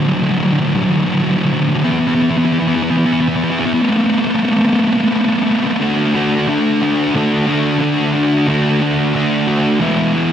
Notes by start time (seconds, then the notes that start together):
0.07 D3 F#3
0.14 D3 F#3
0.22 D3 F#3
0.30 D3 F#3
0.37 D3 F#3
0.44 D3 F#3
0.53 D3 F#3
0.60 D3 F#3
0.68 D3 F#3
0.75 D3 F#3
0.82 D3 F#3
0.91 D3 F#3
0.98 D3 F#3
1.06 D3 F#3
1.14 D3 F#3
1.22 D3 F#3
1.29 D3 F#3
1.37 D3 F#3
1.44 D3 F#3
1.53 D3 F#3
1.59 D3 F#3
1.69 D3 F#3
1.75 D3 F#3
1.83 E3 B3
1.91 E3 B3
1.99 E3 B3
2.07 E3 B3
2.14 E3 B3
2.21 E3 B3
2.30 E3 B3
2.37 E3 B3
2.44 E3 B3
2.52 E3 B3
2.59 E3 B3
2.67 E3 B3
2.75 E3 B3
2.83 E3 B3
2.90 E3 B3
2.97 E3 B3
3.06 E3 B3
3.13 E3 B3
3.21 E3 B3
3.28 E3 B3
3.36 E3 B3
3.44 E3 B3
3.50 E3 B3
3.60 E3 B3
3.66 E3 B3
3.74 E3 B3
3.82 A3 B3
3.90 A3 B3
3.97 A3 B3
4.04 A3 B3
4.12 A3 B3
4.19 A3 B3
4.27 A3 B3
4.35 A3 B3
4.43 A3 B3
4.51 A3 B3
4.59 A3 B3
4.66 A3 B3
4.74 A3 B3
4.81 A3 B3
4.88 A3 B3
4.96 A3 B3
5.04 A3 B3
5.11 A3 B3
5.19 A3 B3
5.26 A3 B3
5.35 A3 B3
5.43 A3 B3
5.50 A3 B3
5.57 A3 B3
5.64 A3 B3
5.72 A3 B3
5.80 D3 A3 D4 F#4
6.14 A3 D4 F#4
6.47 D3 A3 D4 F#4
6.81 A3 D4 F#4
7.14 D3 A3 D4 F#4
7.47 A3 D4 F#4
7.80 D3 A3 D4 F#4
8.14 A3 D4 F#4
8.47 D3 A3 D4 F#4
8.80 A3 D4 F#4
9.14 D3 A3 D4 F#4
9.47 A3 D4 F#4
9.80 E3 G#3 B3 E4
10.14 G#3 B3 E4